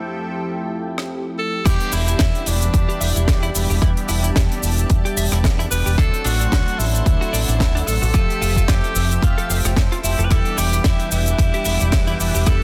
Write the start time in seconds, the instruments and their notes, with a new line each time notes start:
Already playing: analog synth pad F3 A4 E5 G5, analog polysynth F3 A3 C4 E4 G4
0.98 cross-stick
1.39 tenor saxophone A4
1.64 fingered electric bass E2, analog polysynth E3 G3 B3 D4 G4, clean electric guitar E4, analog synth pad G4 D5 E5 B5, tenor saxophone G4, kick, cross-stick, closed hi-hat, crash, cabasa
1.80 closed hi-hat
1.92 fingered electric bass E1, clean electric guitar E4, tenor saxophone E4, open hi-hat, cabasa
2.08 clean electric guitar E4, closed hi-hat, cabasa
2.19 fingered electric bass E2, clean electric guitar E4, kick, snare, closed hi-hat, cabasa
2.35 closed hi-hat
2.46 fingered electric bass E1, tenor saxophone D4, open hi-hat, cabasa
2.62 closed hi-hat, cabasa
2.74 fingered electric bass E2, kick, closed hi-hat, cabasa
2.89 clean electric guitar G4, closed hi-hat
3.00 fingered electric bass E1, clean electric guitar E5, open hi-hat, cabasa
3.16 fingered electric bass E1, clean electric guitar E4, closed hi-hat, cabasa
3.28 fingered electric bass E2, kick, snare, closed hi-hat, cabasa
3.43 clean electric guitar E4, closed hi-hat
3.54 fingered electric bass E1, analog polysynth E3 G3 B3 D4 G4, open hi-hat, cabasa
3.70 fingered electric bass E1, clean electric guitar G4, cabasa
3.81 fingered electric bass E2, analog polysynth E3 G3 B3 D4 G4, clean electric guitar E4, analog synth pad A5, kick, cross-stick, closed hi-hat, cabasa
3.97 closed hi-hat
4.08 fingered electric bass E1, clean electric guitar E4, open hi-hat, cabasa
4.24 clean electric guitar E4, closed hi-hat, cabasa
4.36 fingered electric bass E2, clean electric guitar E4, kick, snare, closed hi-hat, cabasa
4.52 closed hi-hat
4.62 fingered electric bass E1, open hi-hat, cabasa
4.78 closed hi-hat, cabasa
4.90 fingered electric bass E2, kick, closed hi-hat, cabasa
5.05 clean electric guitar G4, muted fingered electric bass stroke, closed hi-hat
5.16 fingered electric bass E1, clean electric guitar E5, open hi-hat, cabasa
5.31 fingered electric bass E1, clean electric guitar E4, cross-stick, closed hi-hat, cabasa
5.44 fingered electric bass E2, kick, snare, closed hi-hat, cabasa
5.59 clean electric guitar E4, closed hi-hat
5.70 fingered electric bass E1, analog polysynth E3 G3 B3 D4 G4, tenor saxophone B4, open hi-hat, cabasa
5.86 fingered electric bass E1, clean electric guitar G4, cabasa
5.97 fingered electric bass D2, analog polysynth F#3 A3 C4 D4 A4, clean electric guitar D4, analog synth pad A4 F#5 C6, tenor saxophone A4, kick, cross-stick, closed hi-hat, cabasa
6.14 closed hi-hat
6.24 fingered electric bass A1, clean electric guitar D4, tenor saxophone F#4, open hi-hat, cabasa
6.40 clean electric guitar D4, closed hi-hat, cabasa
6.52 fingered electric bass D2, clean electric guitar D4, kick, snare, closed hi-hat, cabasa
6.68 closed hi-hat
6.79 fingered electric bass A1, tenor saxophone E4, open hi-hat, cabasa
6.95 closed hi-hat, cabasa
7.06 fingered electric bass D2, kick, closed hi-hat, cabasa
7.21 clean electric guitar F#4, closed hi-hat
7.33 fingered electric bass A1, clean electric guitar D5, open hi-hat, cabasa
7.48 fingered electric bass A1, clean electric guitar D4, closed hi-hat, cabasa
7.60 fingered electric bass D2, kick, snare, closed hi-hat, cabasa
7.75 clean electric guitar D4, closed hi-hat
7.87 fingered electric bass A1, analog polysynth F#3 A3 C4 D4 A4, tenor saxophone A4, open hi-hat, cabasa
8.02 fingered electric bass A1, clean electric guitar F#4, cabasa
8.13 fingered electric bass F2, analog polysynth F3 A3 C4 G4 E5, clean electric guitar F4, analog synth pad G5 E6, kick, cross-stick, closed hi-hat, cabasa
8.30 closed hi-hat
8.41 fingered electric bass F1, clean electric guitar F4, open hi-hat, cabasa
8.56 clean electric guitar F4, kick, closed hi-hat, cabasa
8.68 fingered electric bass F2, clean electric guitar F4, tenor saxophone G4, kick, snare, closed hi-hat, cabasa
8.84 closed hi-hat
8.96 fingered electric bass F1, open hi-hat, cabasa
9.11 closed hi-hat, cabasa
9.22 fingered electric bass F2, tenor saxophone F4, kick, closed hi-hat, cabasa
9.38 clean electric guitar A4, muted fingered electric bass stroke, closed hi-hat
9.49 fingered electric bass F1, clean electric guitar F5, open hi-hat, cabasa
9.65 fingered electric bass F1, clean electric guitar F4, cross-stick, closed hi-hat, cabasa
9.76 fingered electric bass F2, analog polysynth F3 A3 C4 E4 C5, kick, snare, closed hi-hat, cabasa
9.92 clean electric guitar F4, closed hi-hat
10.03 fingered electric bass F1, analog polysynth F3 A3 C4 E4 G4, tenor saxophone E4, open hi-hat, cabasa
10.18 fingered electric bass F1, clean electric guitar A4, closed hi-hat, cabasa
10.25 tenor saxophone B4
10.29 fingered electric bass E2, analog polysynth E3 G3 B3 D4 G4, clean electric guitar E4, tenor saxophone A4, analog synth pad B4 E5 D6, kick, cross-stick, closed hi-hat, ride, cabasa
10.45 closed hi-hat
10.57 fingered electric bass E1, clean electric guitar E4, tenor saxophone G4, open hi-hat, cabasa
10.73 clean electric guitar E4, closed hi-hat, cabasa
10.84 fingered electric bass E2, clean electric guitar E4, tenor saxophone E4, kick, snare, closed hi-hat, ride, cabasa
11.00 closed hi-hat
11.12 fingered electric bass E1, tenor saxophone E4, open hi-hat, cabasa
11.26 closed hi-hat, cabasa
11.39 fingered electric bass E2, kick, closed hi-hat, ride, cabasa
11.54 clean electric guitar G4, closed hi-hat
11.65 fingered electric bass E1, clean electric guitar E5, open hi-hat, cabasa
11.80 fingered electric bass E1, clean electric guitar E4, closed hi-hat, cabasa
11.92 fingered electric bass E2, kick, snare, closed hi-hat, ride, cabasa
12.07 clean electric guitar E4, closed hi-hat
12.19 fingered electric bass E1, analog polysynth E3 G3 B3 D4 G4, tenor saxophone E4, open hi-hat, cabasa
12.35 fingered electric bass E1, clean electric guitar G4, cabasa
12.46 fingered electric bass E2, analog polysynth E3 G3 B3 D4 G4, clean electric guitar E4, tenor saxophone A4, kick, cross-stick, closed hi-hat, ride, cabasa